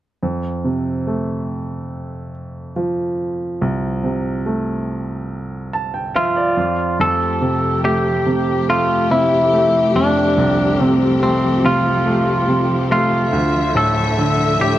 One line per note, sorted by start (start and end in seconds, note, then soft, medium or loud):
0.23 3.57 F2 soft
0.65 2.30 C3 soft
1.07 2.72 A3 soft
2.76 4.41 F3 soft
3.61 6.53 C2 soft
4.04 5.68 C3 soft
4.46 6.11 A3 soft
5.73 5.92 A5 medium
5.94 6.13 G5 soft
6.15 6.56 F3 soft
6.15 7.01 F4 medium
6.15 6.35 E5 medium
6.36 6.95 D5 medium
6.57 6.98 F2 soft
6.99 9.94 F2 soft
6.99 14.79 F3 medium
6.99 13.29 A3 medium
6.99 13.29 G4 medium
6.99 7.80 A4 medium
7.41 8.25 C3 soft
7.84 8.67 A3 soft
7.84 8.69 G4 medium
8.26 9.09 C3 soft
8.68 9.52 A3 soft
8.68 9.08 F4 medium
9.11 10.75 C3 soft
9.11 9.91 E4 medium
9.53 11.18 A3 soft
9.95 11.60 F2 soft
9.95 10.84 D4 medium
10.38 13.29 C2 medium
10.80 11.63 C3 soft
10.80 11.22 C4 medium
11.21 12.05 A3 soft
11.21 11.66 C4 medium
11.64 12.46 C3 soft
11.64 12.87 F4 medium
12.06 12.89 A3 soft
12.48 13.30 C3 soft
12.90 13.31 A3 soft
12.90 13.77 F4 medium
13.32 14.79 D2 medium
13.32 14.79 D3 medium
13.32 14.79 E5 medium
13.75 14.58 A2 soft
13.75 14.56 A4 medium
14.18 14.79 D3 soft
14.60 14.79 A2 soft
14.60 14.79 G4 medium